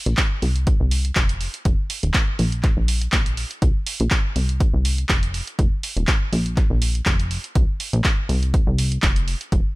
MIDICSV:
0, 0, Header, 1, 3, 480
1, 0, Start_track
1, 0, Tempo, 491803
1, 1613, Time_signature, 4, 2, 24, 8
1, 9520, End_track
2, 0, Start_track
2, 0, Title_t, "Analog synth bass"
2, 0, Program_c, 0, 38
2, 62, Note_on_c, 0, 34, 100
2, 145, Note_off_c, 0, 34, 0
2, 413, Note_on_c, 0, 36, 96
2, 730, Note_off_c, 0, 36, 0
2, 783, Note_on_c, 0, 36, 87
2, 1089, Note_off_c, 0, 36, 0
2, 1134, Note_on_c, 0, 29, 82
2, 1450, Note_off_c, 0, 29, 0
2, 1614, Note_on_c, 0, 29, 94
2, 1710, Note_off_c, 0, 29, 0
2, 1983, Note_on_c, 0, 27, 98
2, 2065, Note_off_c, 0, 27, 0
2, 2334, Note_on_c, 0, 34, 92
2, 2650, Note_off_c, 0, 34, 0
2, 2703, Note_on_c, 0, 34, 85
2, 3008, Note_off_c, 0, 34, 0
2, 3054, Note_on_c, 0, 34, 83
2, 3370, Note_off_c, 0, 34, 0
2, 3534, Note_on_c, 0, 36, 98
2, 3630, Note_off_c, 0, 36, 0
2, 3903, Note_on_c, 0, 34, 101
2, 3985, Note_off_c, 0, 34, 0
2, 4253, Note_on_c, 0, 36, 89
2, 4570, Note_off_c, 0, 36, 0
2, 4622, Note_on_c, 0, 36, 86
2, 4928, Note_off_c, 0, 36, 0
2, 4974, Note_on_c, 0, 29, 81
2, 5290, Note_off_c, 0, 29, 0
2, 5453, Note_on_c, 0, 29, 101
2, 5550, Note_off_c, 0, 29, 0
2, 5823, Note_on_c, 0, 27, 100
2, 5905, Note_off_c, 0, 27, 0
2, 6173, Note_on_c, 0, 34, 96
2, 6490, Note_off_c, 0, 34, 0
2, 6542, Note_on_c, 0, 34, 86
2, 6848, Note_off_c, 0, 34, 0
2, 6894, Note_on_c, 0, 29, 95
2, 7210, Note_off_c, 0, 29, 0
2, 7374, Note_on_c, 0, 36, 95
2, 7470, Note_off_c, 0, 36, 0
2, 7742, Note_on_c, 0, 34, 98
2, 7825, Note_off_c, 0, 34, 0
2, 8093, Note_on_c, 0, 36, 96
2, 8410, Note_off_c, 0, 36, 0
2, 8463, Note_on_c, 0, 36, 88
2, 8768, Note_off_c, 0, 36, 0
2, 8814, Note_on_c, 0, 29, 85
2, 9130, Note_off_c, 0, 29, 0
2, 9294, Note_on_c, 0, 29, 98
2, 9390, Note_off_c, 0, 29, 0
2, 9520, End_track
3, 0, Start_track
3, 0, Title_t, "Drums"
3, 61, Note_on_c, 9, 42, 52
3, 159, Note_off_c, 9, 42, 0
3, 167, Note_on_c, 9, 39, 123
3, 173, Note_on_c, 9, 42, 67
3, 174, Note_on_c, 9, 36, 115
3, 265, Note_off_c, 9, 39, 0
3, 271, Note_off_c, 9, 42, 0
3, 272, Note_off_c, 9, 36, 0
3, 413, Note_on_c, 9, 46, 83
3, 511, Note_off_c, 9, 46, 0
3, 543, Note_on_c, 9, 42, 51
3, 640, Note_off_c, 9, 42, 0
3, 652, Note_on_c, 9, 42, 68
3, 654, Note_on_c, 9, 36, 112
3, 750, Note_off_c, 9, 42, 0
3, 751, Note_off_c, 9, 36, 0
3, 892, Note_on_c, 9, 46, 101
3, 990, Note_off_c, 9, 46, 0
3, 1022, Note_on_c, 9, 42, 51
3, 1120, Note_off_c, 9, 42, 0
3, 1127, Note_on_c, 9, 39, 119
3, 1132, Note_on_c, 9, 42, 65
3, 1134, Note_on_c, 9, 36, 108
3, 1224, Note_off_c, 9, 39, 0
3, 1230, Note_off_c, 9, 42, 0
3, 1232, Note_off_c, 9, 36, 0
3, 1262, Note_on_c, 9, 42, 64
3, 1359, Note_off_c, 9, 42, 0
3, 1372, Note_on_c, 9, 46, 82
3, 1470, Note_off_c, 9, 46, 0
3, 1502, Note_on_c, 9, 42, 52
3, 1600, Note_off_c, 9, 42, 0
3, 1613, Note_on_c, 9, 42, 65
3, 1614, Note_on_c, 9, 36, 116
3, 1710, Note_off_c, 9, 42, 0
3, 1712, Note_off_c, 9, 36, 0
3, 1853, Note_on_c, 9, 46, 108
3, 1951, Note_off_c, 9, 46, 0
3, 1982, Note_on_c, 9, 42, 53
3, 2080, Note_off_c, 9, 42, 0
3, 2087, Note_on_c, 9, 39, 126
3, 2092, Note_on_c, 9, 42, 67
3, 2094, Note_on_c, 9, 36, 118
3, 2184, Note_off_c, 9, 39, 0
3, 2190, Note_off_c, 9, 42, 0
3, 2191, Note_off_c, 9, 36, 0
3, 2332, Note_on_c, 9, 46, 84
3, 2430, Note_off_c, 9, 46, 0
3, 2463, Note_on_c, 9, 42, 48
3, 2560, Note_off_c, 9, 42, 0
3, 2567, Note_on_c, 9, 39, 38
3, 2573, Note_on_c, 9, 42, 62
3, 2574, Note_on_c, 9, 36, 118
3, 2664, Note_off_c, 9, 39, 0
3, 2670, Note_off_c, 9, 42, 0
3, 2671, Note_off_c, 9, 36, 0
3, 2813, Note_on_c, 9, 46, 109
3, 2910, Note_off_c, 9, 46, 0
3, 2942, Note_on_c, 9, 42, 53
3, 3040, Note_off_c, 9, 42, 0
3, 3047, Note_on_c, 9, 39, 122
3, 3053, Note_on_c, 9, 42, 69
3, 3054, Note_on_c, 9, 36, 117
3, 3145, Note_off_c, 9, 39, 0
3, 3150, Note_off_c, 9, 42, 0
3, 3151, Note_off_c, 9, 36, 0
3, 3183, Note_on_c, 9, 42, 62
3, 3280, Note_off_c, 9, 42, 0
3, 3292, Note_on_c, 9, 46, 87
3, 3390, Note_off_c, 9, 46, 0
3, 3423, Note_on_c, 9, 42, 51
3, 3521, Note_off_c, 9, 42, 0
3, 3534, Note_on_c, 9, 36, 119
3, 3534, Note_on_c, 9, 42, 66
3, 3631, Note_off_c, 9, 36, 0
3, 3631, Note_off_c, 9, 42, 0
3, 3772, Note_on_c, 9, 46, 110
3, 3870, Note_off_c, 9, 46, 0
3, 3903, Note_on_c, 9, 42, 50
3, 4001, Note_off_c, 9, 42, 0
3, 4008, Note_on_c, 9, 39, 118
3, 4014, Note_on_c, 9, 36, 122
3, 4014, Note_on_c, 9, 42, 62
3, 4105, Note_off_c, 9, 39, 0
3, 4111, Note_off_c, 9, 36, 0
3, 4111, Note_off_c, 9, 42, 0
3, 4253, Note_on_c, 9, 46, 92
3, 4351, Note_off_c, 9, 46, 0
3, 4383, Note_on_c, 9, 42, 49
3, 4481, Note_off_c, 9, 42, 0
3, 4494, Note_on_c, 9, 36, 116
3, 4494, Note_on_c, 9, 42, 62
3, 4591, Note_off_c, 9, 36, 0
3, 4592, Note_off_c, 9, 42, 0
3, 4734, Note_on_c, 9, 46, 111
3, 4831, Note_off_c, 9, 46, 0
3, 4864, Note_on_c, 9, 42, 49
3, 4961, Note_off_c, 9, 42, 0
3, 4968, Note_on_c, 9, 39, 119
3, 4974, Note_on_c, 9, 36, 116
3, 4974, Note_on_c, 9, 42, 64
3, 5066, Note_off_c, 9, 39, 0
3, 5071, Note_off_c, 9, 36, 0
3, 5071, Note_off_c, 9, 42, 0
3, 5103, Note_on_c, 9, 42, 58
3, 5201, Note_off_c, 9, 42, 0
3, 5214, Note_on_c, 9, 46, 86
3, 5311, Note_off_c, 9, 46, 0
3, 5343, Note_on_c, 9, 42, 50
3, 5440, Note_off_c, 9, 42, 0
3, 5454, Note_on_c, 9, 36, 112
3, 5454, Note_on_c, 9, 42, 60
3, 5551, Note_off_c, 9, 36, 0
3, 5551, Note_off_c, 9, 42, 0
3, 5694, Note_on_c, 9, 46, 101
3, 5791, Note_off_c, 9, 46, 0
3, 5824, Note_on_c, 9, 42, 48
3, 5921, Note_off_c, 9, 42, 0
3, 5928, Note_on_c, 9, 39, 118
3, 5933, Note_on_c, 9, 36, 118
3, 5934, Note_on_c, 9, 42, 59
3, 6026, Note_off_c, 9, 39, 0
3, 6031, Note_off_c, 9, 36, 0
3, 6031, Note_off_c, 9, 42, 0
3, 6174, Note_on_c, 9, 46, 90
3, 6272, Note_off_c, 9, 46, 0
3, 6304, Note_on_c, 9, 42, 45
3, 6401, Note_off_c, 9, 42, 0
3, 6408, Note_on_c, 9, 39, 34
3, 6414, Note_on_c, 9, 36, 118
3, 6414, Note_on_c, 9, 42, 60
3, 6506, Note_off_c, 9, 39, 0
3, 6511, Note_off_c, 9, 36, 0
3, 6511, Note_off_c, 9, 42, 0
3, 6653, Note_on_c, 9, 46, 104
3, 6751, Note_off_c, 9, 46, 0
3, 6784, Note_on_c, 9, 42, 46
3, 6881, Note_off_c, 9, 42, 0
3, 6888, Note_on_c, 9, 39, 113
3, 6893, Note_on_c, 9, 42, 63
3, 6894, Note_on_c, 9, 36, 113
3, 6985, Note_off_c, 9, 39, 0
3, 6991, Note_off_c, 9, 36, 0
3, 6991, Note_off_c, 9, 42, 0
3, 7023, Note_on_c, 9, 42, 59
3, 7121, Note_off_c, 9, 42, 0
3, 7133, Note_on_c, 9, 46, 84
3, 7230, Note_off_c, 9, 46, 0
3, 7263, Note_on_c, 9, 42, 49
3, 7361, Note_off_c, 9, 42, 0
3, 7373, Note_on_c, 9, 42, 60
3, 7374, Note_on_c, 9, 36, 110
3, 7470, Note_off_c, 9, 42, 0
3, 7471, Note_off_c, 9, 36, 0
3, 7613, Note_on_c, 9, 46, 97
3, 7711, Note_off_c, 9, 46, 0
3, 7743, Note_on_c, 9, 42, 50
3, 7841, Note_off_c, 9, 42, 0
3, 7848, Note_on_c, 9, 39, 108
3, 7854, Note_on_c, 9, 36, 113
3, 7854, Note_on_c, 9, 42, 61
3, 7946, Note_off_c, 9, 39, 0
3, 7951, Note_off_c, 9, 36, 0
3, 7951, Note_off_c, 9, 42, 0
3, 8094, Note_on_c, 9, 46, 85
3, 8192, Note_off_c, 9, 46, 0
3, 8224, Note_on_c, 9, 42, 48
3, 8322, Note_off_c, 9, 42, 0
3, 8334, Note_on_c, 9, 36, 115
3, 8334, Note_on_c, 9, 42, 59
3, 8431, Note_off_c, 9, 36, 0
3, 8432, Note_off_c, 9, 42, 0
3, 8574, Note_on_c, 9, 46, 103
3, 8672, Note_off_c, 9, 46, 0
3, 8703, Note_on_c, 9, 42, 52
3, 8801, Note_off_c, 9, 42, 0
3, 8807, Note_on_c, 9, 39, 109
3, 8813, Note_on_c, 9, 42, 64
3, 8814, Note_on_c, 9, 36, 117
3, 8905, Note_off_c, 9, 39, 0
3, 8911, Note_off_c, 9, 36, 0
3, 8911, Note_off_c, 9, 42, 0
3, 8942, Note_on_c, 9, 42, 60
3, 9040, Note_off_c, 9, 42, 0
3, 9054, Note_on_c, 9, 46, 83
3, 9151, Note_off_c, 9, 46, 0
3, 9183, Note_on_c, 9, 42, 51
3, 9281, Note_off_c, 9, 42, 0
3, 9293, Note_on_c, 9, 36, 109
3, 9293, Note_on_c, 9, 42, 64
3, 9391, Note_off_c, 9, 36, 0
3, 9391, Note_off_c, 9, 42, 0
3, 9520, End_track
0, 0, End_of_file